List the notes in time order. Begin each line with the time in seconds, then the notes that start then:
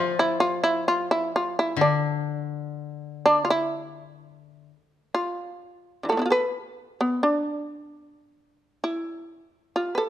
Already playing: F3 F4
0.19 E4
0.40 F4
0.64 E4
0.88 F4
1.11 E4
1.36 F4
1.59 E4
1.77 D3
1.81 D4
3.26 D4
3.45 F4
3.50 E4
5.14 F4
6.03 D3 E3
6.09 F3 A3 A4
6.17 B3 D4
6.22 E4 F4
6.30 A4 B4
7.01 B3
7.23 D4
8.84 E4
9.76 F4
9.95 A4 B4